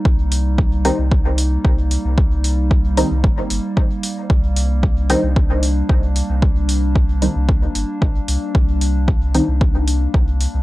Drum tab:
HH |-o-o-o-o|-o-o-o-o|-o-o-o-o|-o-o-o-o|
BD |o-o-o-o-|o-o-o-o-|o-o-o-o-|o-o-o-o-|

HH |-o-o-o-o|
BD |o-o-o-o-|